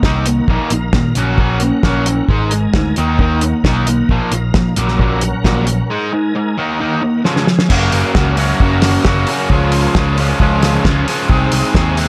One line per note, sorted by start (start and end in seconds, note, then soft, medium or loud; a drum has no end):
0.00 0.40 C2 medium
0.00 1.14 D#4 medium
0.00 2.26 A#4 medium
0.00 0.47 F#5 medium
0.00 2.25 A#5 medium
0.00 kick loud
0.00 snare loud
0.04 0.25 D#3 medium
0.04 0.25 A#3 medium
0.04 0.26 D#4 loud
0.26 0.46 D#3 medium
0.26 0.47 A#3 medium
0.26 closed hi-hat medium
0.48 0.57 A#1 loud
0.48 0.70 A#2 medium
0.48 0.70 D#3 medium
0.48 0.71 A#3 medium
0.48 1.15 F5 medium
0.48 kick loud
0.70 0.89 A#1 medium
0.70 0.92 A#2 medium
0.70 0.92 D#3 medium
0.70 closed hi-hat medium
0.93 1.12 A#2 medium
0.93 1.15 A#2 medium
0.93 1.15 D#3 medium
0.93 kick loud
0.93 snare loud
1.15 1.70 A#1 loud
1.15 1.37 A#3 medium
1.15 2.27 C#4 medium
1.15 1.38 C#4 medium
1.15 1.38 F#4 loud
1.15 2.28 F#5 medium
1.15 closed hi-hat medium
1.38 1.60 A#3 medium
1.38 1.60 C#4 medium
1.38 1.61 F#4 medium
1.38 kick loud
1.60 1.82 A#3 medium
1.60 1.82 C#4 medium
1.60 closed hi-hat medium
1.83 2.20 A#1 medium
1.83 2.05 A#3 medium
1.83 2.05 C#4 medium
1.83 2.06 F#4 medium
1.83 kick loud
1.83 snare loud
2.06 2.27 A#3 medium
2.06 2.27 C#4 medium
2.06 closed hi-hat medium
2.28 2.65 G#1 loud
2.28 2.50 G#3 medium
2.28 2.96 D#4 medium
2.28 2.51 D#4 medium
2.28 2.51 G#4 medium
2.28 7.21 A#4 medium
2.28 2.96 G#5 soft
2.28 4.74 A#5 medium
2.28 kick loud
2.51 2.72 G#3 medium
2.51 2.73 D#4 medium
2.51 closed hi-hat loud
2.74 2.92 D2 medium
2.74 2.95 G#3 medium
2.74 2.95 D#4 medium
2.74 kick loud
2.74 snare loud
2.96 3.52 D#2 loud
2.96 3.18 D#3 medium
2.96 3.19 A#3 medium
2.96 4.76 D#4 medium
2.96 3.19 D#4 medium
2.96 4.09 F#5 medium
2.96 closed hi-hat medium
3.19 3.41 D#3 medium
3.19 3.41 A#3 medium
3.19 3.42 D#4 medium
3.19 kick loud
3.41 3.63 D#3 medium
3.41 3.63 A#3 medium
3.41 closed hi-hat medium
3.64 4.01 B1 medium
3.64 3.86 D#3 medium
3.64 3.86 A#3 medium
3.64 3.87 D#4 loud
3.64 kick loud
3.64 snare loud
3.87 4.08 D#3 medium
3.87 4.08 A#3 medium
3.87 closed hi-hat loud
4.09 4.18 A#1 medium
4.09 4.31 A#2 medium
4.09 4.31 F3 medium
4.09 4.32 A#3 medium
4.09 4.77 F5 medium
4.09 kick loud
4.32 4.50 A#1 medium
4.32 4.53 A#2 medium
4.32 4.53 F3 medium
4.32 closed hi-hat loud
4.54 4.72 A#2 medium
4.54 4.75 A#2 medium
4.54 4.75 F3 medium
4.54 kick loud
4.54 snare loud
4.76 5.32 A#1 loud
4.76 4.98 A#2 medium
4.76 4.99 F#3 medium
4.76 4.99 A#3 medium
4.76 5.89 C#4 medium
4.76 5.89 F#5 medium
4.76 7.23 A#5 medium
4.76 closed hi-hat medium
4.88 snare soft
4.99 5.21 A#2 medium
4.99 5.22 F#3 medium
4.99 5.22 A#3 medium
4.99 kick loud
5.21 5.43 A#2 medium
5.21 5.43 F#3 medium
5.21 closed hi-hat medium
5.44 5.81 A#1 medium
5.44 5.66 A#2 medium
5.44 5.66 F#3 medium
5.44 5.67 A#3 loud
5.44 kick loud
5.44 snare loud
5.67 5.88 A#2 medium
5.67 5.88 F#3 medium
5.67 closed hi-hat medium
5.90 6.11 G#3 medium
5.90 7.24 D#4 medium
5.90 6.12 D#4 medium
5.90 6.12 G#4 loud
5.90 6.57 G#5 soft
6.13 6.33 G#3 medium
6.13 6.33 D#4 medium
6.35 6.56 G#3 medium
6.35 6.56 D#4 medium
6.58 6.79 D#3 medium
6.58 6.79 A#3 medium
6.58 6.79 D#4 medium
6.58 7.25 F#5 medium
6.80 7.01 D#3 medium
6.80 7.01 A#3 medium
6.80 7.02 D#4 medium
7.02 7.22 D#3 medium
7.02 7.23 A#3 medium
7.25 7.46 C#3 medium
7.25 7.46 F3 medium
7.25 7.47 G#3 loud
7.25 7.70 C#4 medium
7.25 7.70 G#4 medium
7.25 7.70 F5 medium
7.25 7.70 G#5 medium
7.25 snare medium
7.36 snare medium
7.47 7.68 C#3 medium
7.47 7.68 F3 medium
7.47 snare medium
7.59 snare medium
7.69 7.88 F#1 medium
7.69 8.13 F#2 medium
7.69 8.14 C#3 loud
7.69 8.15 F#3 loud
7.69 8.16 A#3 loud
7.69 8.16 C#4 medium
7.69 9.49 F#4 medium
7.69 8.16 F#4 loud
7.69 9.49 A#4 medium
7.69 11.27 C#5 medium
7.69 9.49 A#5 medium
7.69 kick loud
7.69 crash loud
7.92 8.02 F#1 medium
7.92 open hi-hat medium
8.14 8.52 C#2 medium
8.14 8.36 F#2 medium
8.14 8.37 C#3 medium
8.14 8.38 F#3 medium
8.14 8.39 A#3 medium
8.14 8.39 C#4 medium
8.14 8.39 F#4 medium
8.14 kick loud
8.14 snare loud
8.37 8.60 F#2 medium
8.37 8.61 C#3 medium
8.37 8.61 F#3 medium
8.37 8.62 A#3 medium
8.37 8.62 C#4 medium
8.37 8.63 F#4 medium
8.37 open hi-hat medium
8.60 8.97 F#1 medium
8.60 9.04 F#2 medium
8.60 9.05 C#3 medium
8.60 9.05 F#3 medium
8.60 9.06 A#3 medium
8.60 9.07 C#4 loud
8.60 9.07 F#4 loud
8.60 kick loud
8.82 snare medium
8.82 open hi-hat medium
9.05 9.24 F#1 loud
9.05 9.26 F#2 medium
9.05 9.27 C#3 medium
9.05 9.28 F#3 medium
9.05 9.29 A#3 medium
9.05 9.29 C#4 medium
9.05 9.29 F#4 loud
9.05 kick loud
9.05 snare loud
9.27 9.49 F#2 medium
9.27 9.49 C#3 loud
9.27 9.49 F#3 medium
9.27 9.50 A#3 medium
9.27 9.50 C#4 medium
9.27 9.50 F#4 loud
9.27 open hi-hat medium
9.50 9.86 C#2 medium
9.50 9.95 C#3 loud
9.50 9.96 F3 medium
9.50 9.97 G#3 medium
9.50 9.97 C#4 medium
9.50 11.28 F4 medium
9.50 9.97 F4 loud
9.50 11.28 A#4 medium
9.50 12.08 G#5 medium
9.50 kick loud
9.72 open hi-hat medium
9.95 10.32 C#2 medium
9.95 10.17 C#3 medium
9.95 10.18 F3 medium
9.95 10.20 G#3 medium
9.95 10.19 C#4 medium
9.95 10.20 F4 medium
9.95 kick loud
9.95 snare loud
10.18 10.39 C#3 medium
10.18 10.40 F3 medium
10.18 10.41 G#3 medium
10.18 10.41 C#4 medium
10.18 10.42 F4 loud
10.18 open hi-hat medium
10.40 10.77 C#2 medium
10.40 10.83 C#3 medium
10.40 10.84 F3 loud
10.40 10.85 G#3 medium
10.40 10.85 C#4 medium
10.40 10.86 F4 medium
10.40 kick loud
10.63 snare medium
10.63 open hi-hat medium
10.85 11.03 C#2 loud
10.85 11.06 C#3 medium
10.85 11.07 F3 medium
10.85 11.07 G#3 medium
10.85 11.08 C#4 medium
10.85 11.09 F4 loud
10.85 kick loud
10.85 snare loud
11.08 11.29 C#3 medium
11.08 11.29 F3 medium
11.08 11.29 G#3 loud
11.08 11.30 C#4 loud
11.08 11.30 F4 loud
11.08 snare soft
11.08 open hi-hat medium
11.29 11.48 C2 medium
11.29 11.73 C3 loud
11.29 11.74 D#3 loud
11.29 11.75 G#3 loud
11.29 11.75 C4 loud
11.29 12.08 D#4 medium
11.29 12.08 G#4 medium
11.29 11.75 G#4 loud
11.29 12.08 C5 medium
11.29 kick loud
11.52 11.61 C2 medium
11.52 open hi-hat loud
11.74 12.08 D#2 medium
11.74 11.96 C3 medium
11.74 11.97 D#3 medium
11.74 11.98 G#3 medium
11.74 11.98 C4 medium
11.74 11.99 G#4 loud
11.74 kick loud
11.74 snare loud
11.97 12.08 C3 medium
11.97 12.08 D#3 medium
11.97 12.08 G#3 medium
11.97 12.08 C4 medium
11.97 12.08 G#4 medium
11.97 open hi-hat medium